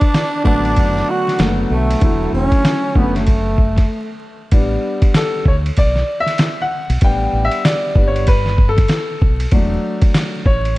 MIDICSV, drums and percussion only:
0, 0, Header, 1, 2, 480
1, 0, Start_track
1, 0, Tempo, 625000
1, 1552, Time_signature, 4, 2, 24, 8
1, 8280, End_track
2, 0, Start_track
2, 0, Title_t, "Drums"
2, 9, Note_on_c, 9, 51, 53
2, 13, Note_on_c, 9, 36, 93
2, 85, Note_off_c, 9, 51, 0
2, 89, Note_off_c, 9, 36, 0
2, 111, Note_on_c, 9, 38, 121
2, 114, Note_on_c, 9, 44, 55
2, 114, Note_on_c, 9, 51, 69
2, 188, Note_off_c, 9, 38, 0
2, 191, Note_off_c, 9, 44, 0
2, 191, Note_off_c, 9, 51, 0
2, 347, Note_on_c, 9, 36, 86
2, 424, Note_off_c, 9, 36, 0
2, 499, Note_on_c, 9, 51, 41
2, 576, Note_off_c, 9, 51, 0
2, 587, Note_on_c, 9, 51, 68
2, 594, Note_on_c, 9, 36, 76
2, 664, Note_off_c, 9, 51, 0
2, 671, Note_off_c, 9, 36, 0
2, 735, Note_on_c, 9, 38, 35
2, 812, Note_off_c, 9, 38, 0
2, 983, Note_on_c, 9, 38, 37
2, 992, Note_on_c, 9, 51, 54
2, 1059, Note_off_c, 9, 38, 0
2, 1065, Note_off_c, 9, 51, 0
2, 1065, Note_on_c, 9, 44, 43
2, 1065, Note_on_c, 9, 51, 64
2, 1074, Note_on_c, 9, 38, 93
2, 1142, Note_off_c, 9, 44, 0
2, 1142, Note_off_c, 9, 51, 0
2, 1150, Note_off_c, 9, 38, 0
2, 1463, Note_on_c, 9, 51, 67
2, 1540, Note_off_c, 9, 51, 0
2, 1546, Note_on_c, 9, 51, 64
2, 1551, Note_on_c, 9, 36, 110
2, 1623, Note_off_c, 9, 51, 0
2, 1627, Note_off_c, 9, 36, 0
2, 1934, Note_on_c, 9, 36, 82
2, 1934, Note_on_c, 9, 51, 57
2, 2011, Note_off_c, 9, 36, 0
2, 2011, Note_off_c, 9, 51, 0
2, 2033, Note_on_c, 9, 38, 127
2, 2036, Note_on_c, 9, 44, 55
2, 2036, Note_on_c, 9, 51, 76
2, 2110, Note_off_c, 9, 38, 0
2, 2113, Note_off_c, 9, 44, 0
2, 2113, Note_off_c, 9, 51, 0
2, 2269, Note_on_c, 9, 36, 89
2, 2346, Note_off_c, 9, 36, 0
2, 2419, Note_on_c, 9, 38, 31
2, 2426, Note_on_c, 9, 51, 48
2, 2496, Note_off_c, 9, 38, 0
2, 2502, Note_off_c, 9, 51, 0
2, 2508, Note_on_c, 9, 51, 66
2, 2515, Note_on_c, 9, 36, 85
2, 2584, Note_off_c, 9, 51, 0
2, 2592, Note_off_c, 9, 36, 0
2, 2749, Note_on_c, 9, 36, 78
2, 2826, Note_off_c, 9, 36, 0
2, 2891, Note_on_c, 9, 38, 36
2, 2900, Note_on_c, 9, 51, 58
2, 2902, Note_on_c, 9, 36, 85
2, 2968, Note_off_c, 9, 38, 0
2, 2977, Note_off_c, 9, 51, 0
2, 2979, Note_off_c, 9, 36, 0
2, 3467, Note_on_c, 9, 51, 67
2, 3471, Note_on_c, 9, 36, 121
2, 3544, Note_off_c, 9, 51, 0
2, 3548, Note_off_c, 9, 36, 0
2, 3854, Note_on_c, 9, 51, 56
2, 3856, Note_on_c, 9, 36, 89
2, 3931, Note_off_c, 9, 51, 0
2, 3932, Note_off_c, 9, 36, 0
2, 3950, Note_on_c, 9, 38, 127
2, 3953, Note_on_c, 9, 44, 56
2, 3953, Note_on_c, 9, 51, 77
2, 4027, Note_off_c, 9, 38, 0
2, 4030, Note_off_c, 9, 44, 0
2, 4030, Note_off_c, 9, 51, 0
2, 4190, Note_on_c, 9, 36, 91
2, 4267, Note_off_c, 9, 36, 0
2, 4346, Note_on_c, 9, 51, 51
2, 4423, Note_off_c, 9, 51, 0
2, 4429, Note_on_c, 9, 51, 70
2, 4436, Note_on_c, 9, 36, 83
2, 4505, Note_off_c, 9, 51, 0
2, 4513, Note_off_c, 9, 36, 0
2, 4574, Note_on_c, 9, 38, 35
2, 4651, Note_off_c, 9, 38, 0
2, 4811, Note_on_c, 9, 38, 38
2, 4820, Note_on_c, 9, 51, 62
2, 4887, Note_off_c, 9, 38, 0
2, 4897, Note_off_c, 9, 51, 0
2, 4901, Note_on_c, 9, 44, 49
2, 4901, Note_on_c, 9, 51, 63
2, 4909, Note_on_c, 9, 38, 100
2, 4977, Note_off_c, 9, 44, 0
2, 4977, Note_off_c, 9, 51, 0
2, 4986, Note_off_c, 9, 38, 0
2, 5297, Note_on_c, 9, 51, 66
2, 5374, Note_off_c, 9, 51, 0
2, 5384, Note_on_c, 9, 51, 75
2, 5391, Note_on_c, 9, 36, 118
2, 5460, Note_off_c, 9, 51, 0
2, 5468, Note_off_c, 9, 36, 0
2, 5771, Note_on_c, 9, 51, 59
2, 5848, Note_off_c, 9, 51, 0
2, 5875, Note_on_c, 9, 38, 124
2, 5878, Note_on_c, 9, 44, 58
2, 5878, Note_on_c, 9, 51, 82
2, 5952, Note_off_c, 9, 38, 0
2, 5955, Note_off_c, 9, 44, 0
2, 5955, Note_off_c, 9, 51, 0
2, 6110, Note_on_c, 9, 36, 88
2, 6187, Note_off_c, 9, 36, 0
2, 6265, Note_on_c, 9, 51, 51
2, 6342, Note_off_c, 9, 51, 0
2, 6349, Note_on_c, 9, 51, 70
2, 6357, Note_on_c, 9, 36, 88
2, 6426, Note_off_c, 9, 51, 0
2, 6434, Note_off_c, 9, 36, 0
2, 6496, Note_on_c, 9, 38, 39
2, 6573, Note_off_c, 9, 38, 0
2, 6590, Note_on_c, 9, 36, 83
2, 6667, Note_off_c, 9, 36, 0
2, 6732, Note_on_c, 9, 38, 39
2, 6741, Note_on_c, 9, 51, 63
2, 6744, Note_on_c, 9, 36, 102
2, 6808, Note_off_c, 9, 38, 0
2, 6818, Note_off_c, 9, 51, 0
2, 6821, Note_off_c, 9, 36, 0
2, 6822, Note_on_c, 9, 44, 44
2, 6822, Note_on_c, 9, 51, 67
2, 6831, Note_on_c, 9, 38, 100
2, 6899, Note_off_c, 9, 44, 0
2, 6899, Note_off_c, 9, 51, 0
2, 6907, Note_off_c, 9, 38, 0
2, 7079, Note_on_c, 9, 36, 109
2, 7156, Note_off_c, 9, 36, 0
2, 7219, Note_on_c, 9, 51, 68
2, 7295, Note_off_c, 9, 51, 0
2, 7307, Note_on_c, 9, 51, 63
2, 7312, Note_on_c, 9, 36, 122
2, 7384, Note_off_c, 9, 51, 0
2, 7389, Note_off_c, 9, 36, 0
2, 7692, Note_on_c, 9, 51, 65
2, 7696, Note_on_c, 9, 36, 107
2, 7768, Note_off_c, 9, 51, 0
2, 7772, Note_off_c, 9, 36, 0
2, 7791, Note_on_c, 9, 38, 123
2, 7794, Note_on_c, 9, 44, 57
2, 7794, Note_on_c, 9, 51, 83
2, 7867, Note_off_c, 9, 38, 0
2, 7870, Note_off_c, 9, 44, 0
2, 7870, Note_off_c, 9, 51, 0
2, 8031, Note_on_c, 9, 36, 95
2, 8107, Note_off_c, 9, 36, 0
2, 8181, Note_on_c, 9, 51, 50
2, 8257, Note_off_c, 9, 51, 0
2, 8280, End_track
0, 0, End_of_file